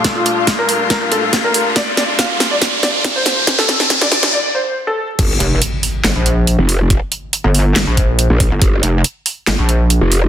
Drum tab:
CC |----------------|----------------|----------------|x---------------|
HH |x-x-x-o-x-x-x-o-|x-x-x-o-x-x-x-o-|x-x-x-o---------|x-x-x-o-x-x-x-o-|
CP |----------------|----------------|----------------|--------x-------|
SD |o---o---o---o---|o-o-o-o-o-o-o-o-|oooooooo--------|--------o-------|
BD |o---o---o---o---|o---o---o---o---|o---o-----------|o---------------|

CC |----------------|----------------|
HH |x-x-x-o-x-x-x-o-|x-x-x-o-x-x-x-o-|
CP |--------x-------|--------x-------|
SD |--------o-------|--------o-------|
BD |o---------o---o-|o---------------|